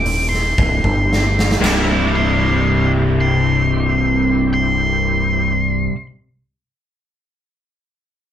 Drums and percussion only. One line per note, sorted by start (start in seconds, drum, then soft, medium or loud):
0.06 open hi-hat medium
0.34 snare soft
0.58 kick loud
0.84 kick medium
1.13 snare medium
1.39 snare medium
1.51 snare medium
1.64 snare medium
1.64 splash medium